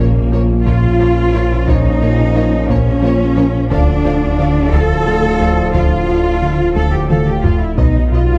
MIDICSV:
0, 0, Header, 1, 13, 480
1, 0, Start_track
1, 0, Tempo, 677966
1, 1186, Time_signature, 6, 3, 24, 8
1, 5933, End_track
2, 0, Start_track
2, 0, Title_t, "Violin section"
2, 0, Program_c, 0, 48
2, 4, Note_on_c, 0, 73, 43
2, 60, Note_off_c, 0, 73, 0
2, 241, Note_on_c, 0, 73, 46
2, 298, Note_off_c, 0, 73, 0
2, 473, Note_on_c, 0, 73, 49
2, 529, Note_off_c, 0, 73, 0
2, 716, Note_on_c, 0, 73, 45
2, 773, Note_off_c, 0, 73, 0
2, 957, Note_on_c, 0, 73, 48
2, 1014, Note_off_c, 0, 73, 0
2, 1191, Note_on_c, 0, 73, 55
2, 1248, Note_off_c, 0, 73, 0
2, 1431, Note_on_c, 0, 73, 47
2, 1487, Note_off_c, 0, 73, 0
2, 1670, Note_on_c, 0, 73, 49
2, 1726, Note_off_c, 0, 73, 0
2, 1911, Note_on_c, 0, 73, 52
2, 1968, Note_off_c, 0, 73, 0
2, 2160, Note_on_c, 0, 73, 54
2, 2217, Note_off_c, 0, 73, 0
2, 2385, Note_on_c, 0, 73, 55
2, 2442, Note_off_c, 0, 73, 0
2, 2635, Note_on_c, 0, 77, 59
2, 2691, Note_off_c, 0, 77, 0
2, 2874, Note_on_c, 0, 77, 54
2, 2930, Note_off_c, 0, 77, 0
2, 3116, Note_on_c, 0, 77, 54
2, 3172, Note_off_c, 0, 77, 0
2, 3352, Note_on_c, 0, 77, 58
2, 3408, Note_off_c, 0, 77, 0
2, 3595, Note_on_c, 0, 77, 55
2, 3651, Note_off_c, 0, 77, 0
2, 3830, Note_on_c, 0, 77, 51
2, 3887, Note_off_c, 0, 77, 0
2, 4068, Note_on_c, 0, 77, 55
2, 4125, Note_off_c, 0, 77, 0
2, 4303, Note_on_c, 0, 77, 43
2, 4360, Note_off_c, 0, 77, 0
2, 4549, Note_on_c, 0, 77, 42
2, 4605, Note_off_c, 0, 77, 0
2, 4792, Note_on_c, 0, 77, 41
2, 4849, Note_off_c, 0, 77, 0
2, 5028, Note_on_c, 0, 77, 40
2, 5085, Note_off_c, 0, 77, 0
2, 5278, Note_on_c, 0, 77, 40
2, 5335, Note_off_c, 0, 77, 0
2, 5507, Note_on_c, 0, 75, 44
2, 5563, Note_off_c, 0, 75, 0
2, 5761, Note_on_c, 0, 75, 38
2, 5818, Note_off_c, 0, 75, 0
2, 5933, End_track
3, 0, Start_track
3, 0, Title_t, "Violin section"
3, 0, Program_c, 1, 48
3, 228, Note_on_c, 1, 70, 46
3, 284, Note_off_c, 1, 70, 0
3, 475, Note_on_c, 1, 70, 49
3, 531, Note_off_c, 1, 70, 0
3, 703, Note_on_c, 1, 70, 45
3, 760, Note_off_c, 1, 70, 0
3, 948, Note_on_c, 1, 70, 46
3, 1004, Note_off_c, 1, 70, 0
3, 1183, Note_on_c, 1, 70, 52
3, 1240, Note_off_c, 1, 70, 0
3, 1433, Note_on_c, 1, 70, 48
3, 1489, Note_off_c, 1, 70, 0
3, 1670, Note_on_c, 1, 70, 46
3, 1727, Note_off_c, 1, 70, 0
3, 1908, Note_on_c, 1, 70, 53
3, 1965, Note_off_c, 1, 70, 0
3, 2144, Note_on_c, 1, 70, 49
3, 2200, Note_off_c, 1, 70, 0
3, 2391, Note_on_c, 1, 70, 52
3, 2448, Note_off_c, 1, 70, 0
3, 2620, Note_on_c, 1, 69, 64
3, 2677, Note_off_c, 1, 69, 0
3, 2873, Note_on_c, 1, 69, 55
3, 2929, Note_off_c, 1, 69, 0
3, 3121, Note_on_c, 1, 69, 53
3, 3178, Note_off_c, 1, 69, 0
3, 3362, Note_on_c, 1, 69, 62
3, 3419, Note_off_c, 1, 69, 0
3, 3611, Note_on_c, 1, 69, 52
3, 3668, Note_off_c, 1, 69, 0
3, 3838, Note_on_c, 1, 69, 53
3, 3895, Note_off_c, 1, 69, 0
3, 4080, Note_on_c, 1, 69, 53
3, 4137, Note_off_c, 1, 69, 0
3, 4327, Note_on_c, 1, 69, 46
3, 4384, Note_off_c, 1, 69, 0
3, 4566, Note_on_c, 1, 69, 42
3, 4623, Note_off_c, 1, 69, 0
3, 4808, Note_on_c, 1, 69, 46
3, 4864, Note_off_c, 1, 69, 0
3, 5036, Note_on_c, 1, 69, 38
3, 5092, Note_off_c, 1, 69, 0
3, 5279, Note_on_c, 1, 69, 39
3, 5336, Note_off_c, 1, 69, 0
3, 5513, Note_on_c, 1, 71, 44
3, 5570, Note_off_c, 1, 71, 0
3, 5767, Note_on_c, 1, 71, 40
3, 5824, Note_off_c, 1, 71, 0
3, 5933, End_track
4, 0, Start_track
4, 0, Title_t, "Cello section"
4, 0, Program_c, 2, 48
4, 0, Note_on_c, 2, 58, 76
4, 440, Note_off_c, 2, 58, 0
4, 471, Note_on_c, 2, 65, 79
4, 1188, Note_on_c, 2, 63, 79
4, 1189, Note_off_c, 2, 65, 0
4, 1907, Note_off_c, 2, 63, 0
4, 1910, Note_on_c, 2, 61, 81
4, 2624, Note_on_c, 2, 62, 87
4, 2628, Note_off_c, 2, 61, 0
4, 3331, Note_off_c, 2, 62, 0
4, 3347, Note_on_c, 2, 69, 97
4, 4066, Note_off_c, 2, 69, 0
4, 4070, Note_on_c, 2, 65, 81
4, 4774, Note_off_c, 2, 65, 0
4, 4784, Note_on_c, 2, 69, 71
4, 4902, Note_off_c, 2, 69, 0
4, 4908, Note_on_c, 2, 67, 65
4, 5023, Note_on_c, 2, 69, 62
4, 5027, Note_off_c, 2, 67, 0
4, 5142, Note_off_c, 2, 69, 0
4, 5144, Note_on_c, 2, 67, 57
4, 5262, Note_on_c, 2, 65, 63
4, 5265, Note_off_c, 2, 67, 0
4, 5384, Note_off_c, 2, 65, 0
4, 5391, Note_on_c, 2, 64, 58
4, 5506, Note_on_c, 2, 63, 60
4, 5508, Note_off_c, 2, 64, 0
4, 5741, Note_off_c, 2, 63, 0
4, 5744, Note_on_c, 2, 65, 64
4, 5933, Note_off_c, 2, 65, 0
4, 5933, End_track
5, 0, Start_track
5, 0, Title_t, "French horn section"
5, 0, Program_c, 3, 60
5, 0, Note_on_c, 3, 61, 63
5, 2596, Note_off_c, 3, 61, 0
5, 2630, Note_on_c, 3, 62, 68
5, 2630, Note_on_c, 3, 65, 73
5, 5253, Note_off_c, 3, 62, 0
5, 5253, Note_off_c, 3, 65, 0
5, 5510, Note_on_c, 3, 63, 50
5, 5513, Note_on_c, 3, 59, 52
5, 5933, Note_off_c, 3, 59, 0
5, 5933, Note_off_c, 3, 63, 0
5, 5933, End_track
6, 0, Start_track
6, 0, Title_t, "Synth pluck"
6, 0, Program_c, 4, 84
6, 0, Note_on_c, 4, 61, 60
6, 131, Note_off_c, 4, 61, 0
6, 230, Note_on_c, 4, 65, 60
6, 373, Note_off_c, 4, 65, 0
6, 472, Note_on_c, 4, 58, 80
6, 614, Note_off_c, 4, 58, 0
6, 709, Note_on_c, 4, 65, 59
6, 852, Note_off_c, 4, 65, 0
6, 949, Note_on_c, 4, 61, 60
6, 1092, Note_off_c, 4, 61, 0
6, 1190, Note_on_c, 4, 58, 84
6, 1333, Note_off_c, 4, 58, 0
6, 1435, Note_on_c, 4, 61, 57
6, 1576, Note_off_c, 4, 61, 0
6, 1664, Note_on_c, 4, 65, 55
6, 1809, Note_off_c, 4, 65, 0
6, 1907, Note_on_c, 4, 58, 79
6, 2050, Note_off_c, 4, 58, 0
6, 2152, Note_on_c, 4, 65, 64
6, 2294, Note_off_c, 4, 65, 0
6, 2388, Note_on_c, 4, 61, 56
6, 2532, Note_off_c, 4, 61, 0
6, 2629, Note_on_c, 4, 50, 84
6, 2772, Note_off_c, 4, 50, 0
6, 2866, Note_on_c, 4, 53, 60
6, 3010, Note_off_c, 4, 53, 0
6, 3108, Note_on_c, 4, 57, 56
6, 3252, Note_off_c, 4, 57, 0
6, 3350, Note_on_c, 4, 50, 85
6, 3493, Note_off_c, 4, 50, 0
6, 3591, Note_on_c, 4, 57, 61
6, 3733, Note_off_c, 4, 57, 0
6, 3833, Note_on_c, 4, 53, 60
6, 3975, Note_off_c, 4, 53, 0
6, 4066, Note_on_c, 4, 50, 80
6, 4210, Note_off_c, 4, 50, 0
6, 4308, Note_on_c, 4, 53, 53
6, 4451, Note_off_c, 4, 53, 0
6, 4542, Note_on_c, 4, 57, 52
6, 4687, Note_off_c, 4, 57, 0
6, 4785, Note_on_c, 4, 50, 73
6, 4930, Note_off_c, 4, 50, 0
6, 5026, Note_on_c, 4, 57, 54
6, 5170, Note_off_c, 4, 57, 0
6, 5265, Note_on_c, 4, 53, 55
6, 5409, Note_off_c, 4, 53, 0
6, 5505, Note_on_c, 4, 59, 78
6, 5649, Note_off_c, 4, 59, 0
6, 5748, Note_on_c, 4, 63, 55
6, 5891, Note_off_c, 4, 63, 0
6, 5933, End_track
7, 0, Start_track
7, 0, Title_t, "Viola section"
7, 0, Program_c, 5, 48
7, 222, Note_on_c, 5, 53, 46
7, 279, Note_off_c, 5, 53, 0
7, 458, Note_on_c, 5, 53, 47
7, 515, Note_off_c, 5, 53, 0
7, 698, Note_on_c, 5, 53, 47
7, 754, Note_off_c, 5, 53, 0
7, 941, Note_on_c, 5, 53, 47
7, 998, Note_off_c, 5, 53, 0
7, 1185, Note_on_c, 5, 53, 52
7, 1242, Note_off_c, 5, 53, 0
7, 1420, Note_on_c, 5, 53, 49
7, 1477, Note_off_c, 5, 53, 0
7, 1664, Note_on_c, 5, 53, 48
7, 1721, Note_off_c, 5, 53, 0
7, 1900, Note_on_c, 5, 53, 51
7, 1957, Note_off_c, 5, 53, 0
7, 2135, Note_on_c, 5, 53, 52
7, 2192, Note_off_c, 5, 53, 0
7, 2380, Note_on_c, 5, 53, 54
7, 2436, Note_off_c, 5, 53, 0
7, 2620, Note_on_c, 5, 53, 58
7, 2677, Note_off_c, 5, 53, 0
7, 2858, Note_on_c, 5, 53, 55
7, 2915, Note_off_c, 5, 53, 0
7, 3099, Note_on_c, 5, 53, 58
7, 3155, Note_off_c, 5, 53, 0
7, 3345, Note_on_c, 5, 53, 53
7, 3402, Note_off_c, 5, 53, 0
7, 3582, Note_on_c, 5, 53, 54
7, 3639, Note_off_c, 5, 53, 0
7, 3821, Note_on_c, 5, 53, 49
7, 3878, Note_off_c, 5, 53, 0
7, 4057, Note_on_c, 5, 53, 49
7, 4114, Note_off_c, 5, 53, 0
7, 4297, Note_on_c, 5, 53, 47
7, 4354, Note_off_c, 5, 53, 0
7, 4533, Note_on_c, 5, 53, 42
7, 4590, Note_off_c, 5, 53, 0
7, 4773, Note_on_c, 5, 53, 43
7, 4830, Note_off_c, 5, 53, 0
7, 5020, Note_on_c, 5, 53, 41
7, 5076, Note_off_c, 5, 53, 0
7, 5261, Note_on_c, 5, 53, 38
7, 5318, Note_off_c, 5, 53, 0
7, 5505, Note_on_c, 5, 54, 41
7, 5562, Note_off_c, 5, 54, 0
7, 5748, Note_on_c, 5, 54, 39
7, 5805, Note_off_c, 5, 54, 0
7, 5933, End_track
8, 0, Start_track
8, 0, Title_t, "Trombone section"
8, 0, Program_c, 6, 61
8, 0, Note_on_c, 6, 46, 60
8, 0, Note_on_c, 6, 53, 62
8, 2596, Note_off_c, 6, 46, 0
8, 2596, Note_off_c, 6, 53, 0
8, 2631, Note_on_c, 6, 53, 64
8, 2635, Note_on_c, 6, 45, 71
8, 5254, Note_off_c, 6, 53, 0
8, 5256, Note_off_c, 6, 45, 0
8, 5505, Note_on_c, 6, 47, 49
8, 5509, Note_on_c, 6, 54, 52
8, 5933, Note_off_c, 6, 47, 0
8, 5933, Note_off_c, 6, 54, 0
8, 5933, End_track
9, 0, Start_track
9, 0, Title_t, "Analog synth bass"
9, 0, Program_c, 7, 38
9, 0, Note_on_c, 7, 46, 62
9, 136, Note_off_c, 7, 46, 0
9, 241, Note_on_c, 7, 58, 55
9, 380, Note_off_c, 7, 58, 0
9, 477, Note_on_c, 7, 46, 80
9, 618, Note_off_c, 7, 46, 0
9, 719, Note_on_c, 7, 58, 58
9, 859, Note_off_c, 7, 58, 0
9, 962, Note_on_c, 7, 46, 60
9, 1101, Note_off_c, 7, 46, 0
9, 1197, Note_on_c, 7, 46, 81
9, 1337, Note_off_c, 7, 46, 0
9, 1437, Note_on_c, 7, 46, 61
9, 1578, Note_off_c, 7, 46, 0
9, 1675, Note_on_c, 7, 58, 56
9, 1816, Note_off_c, 7, 58, 0
9, 1912, Note_on_c, 7, 46, 85
9, 2054, Note_off_c, 7, 46, 0
9, 2148, Note_on_c, 7, 58, 61
9, 2291, Note_off_c, 7, 58, 0
9, 2389, Note_on_c, 7, 46, 63
9, 2532, Note_off_c, 7, 46, 0
9, 2629, Note_on_c, 7, 38, 82
9, 2772, Note_off_c, 7, 38, 0
9, 2870, Note_on_c, 7, 38, 60
9, 3013, Note_off_c, 7, 38, 0
9, 3109, Note_on_c, 7, 50, 56
9, 3252, Note_off_c, 7, 50, 0
9, 3348, Note_on_c, 7, 38, 89
9, 3491, Note_off_c, 7, 38, 0
9, 3589, Note_on_c, 7, 50, 58
9, 3732, Note_off_c, 7, 50, 0
9, 3832, Note_on_c, 7, 38, 59
9, 3974, Note_off_c, 7, 38, 0
9, 4066, Note_on_c, 7, 38, 76
9, 4210, Note_off_c, 7, 38, 0
9, 4310, Note_on_c, 7, 38, 57
9, 4453, Note_off_c, 7, 38, 0
9, 4547, Note_on_c, 7, 50, 56
9, 4691, Note_off_c, 7, 50, 0
9, 4787, Note_on_c, 7, 38, 75
9, 4931, Note_off_c, 7, 38, 0
9, 5027, Note_on_c, 7, 50, 51
9, 5171, Note_off_c, 7, 50, 0
9, 5268, Note_on_c, 7, 38, 57
9, 5411, Note_off_c, 7, 38, 0
9, 5507, Note_on_c, 7, 47, 75
9, 5651, Note_off_c, 7, 47, 0
9, 5749, Note_on_c, 7, 47, 55
9, 5892, Note_off_c, 7, 47, 0
9, 5933, End_track
10, 0, Start_track
10, 0, Title_t, "Double bass section"
10, 0, Program_c, 8, 48
10, 0, Note_on_c, 8, 34, 63
10, 385, Note_off_c, 8, 34, 0
10, 470, Note_on_c, 8, 34, 59
10, 1103, Note_off_c, 8, 34, 0
10, 1192, Note_on_c, 8, 34, 66
10, 1824, Note_off_c, 8, 34, 0
10, 1906, Note_on_c, 8, 34, 66
10, 2541, Note_off_c, 8, 34, 0
10, 2627, Note_on_c, 8, 38, 77
10, 3261, Note_off_c, 8, 38, 0
10, 3348, Note_on_c, 8, 38, 69
10, 3982, Note_off_c, 8, 38, 0
10, 4067, Note_on_c, 8, 38, 65
10, 4702, Note_off_c, 8, 38, 0
10, 4785, Note_on_c, 8, 38, 49
10, 5420, Note_off_c, 8, 38, 0
10, 5509, Note_on_c, 8, 35, 51
10, 5933, Note_off_c, 8, 35, 0
10, 5933, End_track
11, 0, Start_track
11, 0, Title_t, "Sub bass"
11, 0, Program_c, 10, 38
11, 0, Note_on_c, 10, 34, 65
11, 2627, Note_on_c, 10, 26, 68
11, 2638, Note_off_c, 10, 34, 0
11, 5500, Note_on_c, 10, 35, 59
11, 5510, Note_off_c, 10, 26, 0
11, 5933, Note_off_c, 10, 35, 0
11, 5933, End_track
12, 0, Start_track
12, 0, Title_t, "Impact"
12, 0, Program_c, 11, 103
12, 0, Note_on_c, 11, 60, 55
12, 1187, Note_off_c, 11, 60, 0
12, 5933, End_track
13, 0, Start_track
13, 0, Title_t, "Taiko and cinematic ensemble drums"
13, 472, Note_on_c, 9, 41, 66
13, 543, Note_off_c, 9, 41, 0
13, 1191, Note_on_c, 9, 41, 90
13, 1261, Note_off_c, 9, 41, 0
13, 1910, Note_on_c, 9, 41, 66
13, 1981, Note_off_c, 9, 41, 0
13, 2630, Note_on_c, 9, 41, 91
13, 2701, Note_off_c, 9, 41, 0
13, 3348, Note_on_c, 9, 41, 70
13, 3419, Note_off_c, 9, 41, 0
13, 4067, Note_on_c, 9, 41, 84
13, 4138, Note_off_c, 9, 41, 0
13, 4790, Note_on_c, 9, 48, 64
13, 4861, Note_off_c, 9, 48, 0
13, 5030, Note_on_c, 9, 47, 76
13, 5101, Note_off_c, 9, 47, 0
13, 5270, Note_on_c, 9, 43, 80
13, 5341, Note_off_c, 9, 43, 0
13, 5507, Note_on_c, 9, 41, 83
13, 5577, Note_off_c, 9, 41, 0
13, 5933, End_track
0, 0, End_of_file